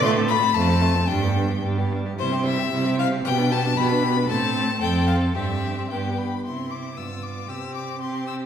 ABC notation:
X:1
M:2/4
L:1/16
Q:1/4=114
K:C
V:1 name="Violin"
c'2 b2 a4 | g4 z4 | c2 e4 f2 | g2 a2 b4 |
a4 g2 f2 | e4 g2 b2 | c'2 d'2 e'2 d'2 | e'2 d'2 c'2 e'2 |]
V:2 name="Violin"
F A F A F A F A | D G D G D G D G | E G E G E G E G | G B G B G B G B |
A4 A4 | G4 G2 z2 | E4 F4 | G4 G4 |]
V:3 name="Viola"
A, C A, C A, C A, C | G, B, G, B, G, B, G, B, | G, C G, C G, C G, C | B, D B, D B, D B, D |
C4 C4 | C4 B,2 z2 | C4 B,4 | C4 C4 |]
V:4 name="Cello" clef=bass
A,,4 F,,4 | G,,4 G,,4 | C,4 C,4 | B,,4 B,,4 |
A,,4 F,,4 | G,,4 G,,2 z2 | C,4 G,,4 | C,8 |]